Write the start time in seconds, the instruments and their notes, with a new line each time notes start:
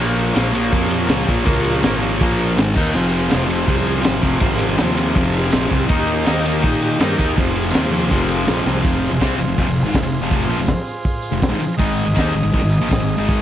Already playing: fingered electric bass A#1, distorted electric guitar A#2 F3 A#3
0.00 transistor combo organ F4 A#4 C#5
0.19 ride
0.26 tambourine
0.34 fingered electric bass A#1, distorted electric guitar A#2 F3 A#3, snare, ride, tambourine
0.53 distorted electric guitar A#2 F3 A#3, ride, tambourine
0.73 fingered electric bass F2, distorted electric guitar A#2 F3 A#3, kick, ride
0.82 tambourine
0.91 ride
1.07 fingered electric bass C#2, distorted electric guitar A#2 F3 A#3, snare, ride, tambourine
1.27 fingered electric bass A#1, distorted electric guitar A#2 F3 A#3, kick, ride, tambourine
1.39 tambourine
1.44 fingered electric bass C#2, distorted electric guitar A#2 F3 A#3, kick, ride
1.64 ride, tambourine
1.82 fingered electric bass G#1, distorted electric guitar A#2 F3 A#3, snare, ride, tambourine
1.94 tambourine
2.00 distorted electric guitar A#2 F3 A#3, ride
2.21 fingered electric bass A#1, distorted electric guitar A#2 F3 A#3, kick, ride, tambourine
2.28 tambourine
2.37 ride, tambourine
2.47 tambourine
2.54 fingered electric bass G#1, distorted electric guitar G#2 D#3, tambourine
2.58 distorted electric guitar G#3, snare, ride
2.73 fingered electric bass D#2, distorted electric guitar D#3 A#3, kick, tambourine
2.77 distorted electric guitar D#4, crash
2.93 fingered electric bass F1, distorted electric guitar F2 C3 F3, transistor combo organ F4 G#4 C5
3.14 ride
3.20 tambourine
3.29 fingered electric bass F1, distorted electric guitar F2 C3 F3, snare, ride, tambourine
3.47 distorted electric guitar F2 C3 F3, ride, tambourine
3.66 fingered electric bass C2, distorted electric guitar F2 C3 F3, kick, ride
3.77 tambourine
3.85 ride, tambourine
4.01 distorted electric guitar F2 C3 F3, ride, tambourine
4.05 fingered electric bass G#1, snare
4.21 fingered electric bass F1, distorted electric guitar F2 C3 F3, kick, ride, tambourine
4.40 fingered electric bass G#1, distorted electric guitar F2 C3 F3, kick, ride
4.59 ride
4.71 tambourine
4.77 fingered electric bass D#2, distorted electric guitar F2 C3 F3, snare, ride, tambourine
4.96 distorted electric guitar F2 C3 F3, ride, tambourine
5.15 fingered electric bass F1, distorted electric guitar F2 C3 F3, kick, ride
5.24 tambourine
5.33 ride, tambourine
5.51 fingered electric bass A#1, distorted electric guitar F2 C3 F3, snare, ride, tambourine
5.68 fingered electric bass C2, distorted electric guitar F2 C3 F3, kick, ride, tambourine
5.81 tambourine
5.88 fingered electric bass D#2, distorted electric guitar D#3 A#3 D#4, transistor combo organ G4, kick, ride
5.93 transistor combo organ D#4 A#4
6.07 ride
6.17 tambourine
6.26 fingered electric bass D#2, distorted electric guitar D#3 A#3 D#4, snare, ride, tambourine
6.45 distorted electric guitar D#3 A#3 D#4, ride, tambourine
6.61 fingered electric bass A#2, distorted electric guitar D#3 A#3 D#4, kick, ride
6.72 tambourine
6.81 ride, tambourine
6.99 fingered electric bass G2, distorted electric guitar D#3 A#3 D#4, snare, ride, tambourine
7.18 fingered electric bass D#2, distorted electric guitar D#3 A#3 D#4, kick, ride, tambourine
7.36 fingered electric bass F1, distorted electric guitar F2 C3 F3, transistor combo organ F4 G#4 C5, kick, ride, tambourine
7.46 tambourine
7.54 ride, tambourine
7.63 tambourine
7.70 distorted electric guitar F2 C3 F3, ride, tambourine
7.75 fingered electric bass D#2, snare
7.90 distorted electric guitar F2 C3 F3, ride, tambourine
8.00 tambourine
8.09 fingered electric bass F1, distorted electric guitar F2 C3 F3, kick, ride, tambourine
8.18 tambourine
8.28 ride, tambourine
8.39 tambourine
8.46 fingered electric bass A#1, distorted electric guitar F2 C3 F3, snare, ride, tambourine
8.57 tambourine
8.66 fingered electric bass C2, distorted electric guitar F2 C3 F3, snare, tambourine
8.84 fingered electric bass F1, distorted electric guitar F2 C3 F3, transistor combo organ F4 G#4 C5, kick, open hi-hat, tambourine
9.11 fingered electric bass F1, distorted electric guitar F2 C3
9.21 fingered electric bass C2, distorted electric guitar C3 G3 C4, kick, snare, open hi-hat, tambourine
9.38 fingered electric bass F1, distorted electric guitar F2 C3, tambourine
9.47 fingered electric bass F1, distorted electric guitar F2 C3
9.58 fingered electric bass F1, distorted electric guitar F2 C3, kick, open hi-hat
9.65 fingered electric bass F1, distorted electric guitar F2 C3
9.76 tambourine
9.82 fingered electric bass G#1, distorted electric guitar G#2
9.87 distorted electric guitar D#3
9.93 fingered electric bass F1, distorted electric guitar F2, kick, snare, open hi-hat, tambourine
9.97 distorted electric guitar C3
10.02 fingered electric bass F1, distorted electric guitar F2 C3
10.11 tambourine
10.20 fingered electric bass F1, distorted electric guitar F2 C3 F3
10.30 kick, open hi-hat, tambourine
10.47 fingered electric bass A#1, distorted electric guitar A#2 F3
10.57 fingered electric bass F1, distorted electric guitar F2 C3
10.66 kick, snare, open hi-hat, tambourine
10.85 tambourine
11.05 kick, open hi-hat
11.22 tambourine
11.31 fingered electric bass F1, distorted electric guitar F2 C3
11.42 kick, snare, open hi-hat, tambourine
11.49 fingered electric bass G#1, distorted electric guitar G#2 D#3
11.57 muted fingered electric bass stroke, muted distorted electric guitar stroke, tambourine
11.77 fingered electric bass G#1, distorted electric guitar G#2 D#3 G#3, transistor combo organ D#4 G#4 D#5, kick, open hi-hat, tambourine
12.05 fingered electric bass G#1, distorted electric guitar G#2 D#3
12.14 fingered electric bass D#2, distorted electric guitar D#3 A#3 D#4, kick, open hi-hat, tambourine
12.19 snare
12.33 fingered electric bass G#1, distorted electric guitar G#2 D#3, tambourine
12.43 fingered electric bass G#1, distorted electric guitar G#2 D#3
12.53 fingered electric bass G#1, distorted electric guitar G#2 D#3, kick, open hi-hat
12.61 fingered electric bass G#1, distorted electric guitar G#2 D#3
12.71 tambourine
12.80 fingered electric bass A#1, distorted electric guitar A#2 F3
12.89 fingered electric bass G#1, distorted electric guitar G#2 D#3, kick, open hi-hat, tambourine
12.93 snare
12.99 fingered electric bass G#1, distorted electric guitar G#2 D#3
13.07 tambourine
13.17 fingered electric bass G#1, distorted electric guitar G#2 D#3 G#3
13.26 kick, open hi-hat, tambourine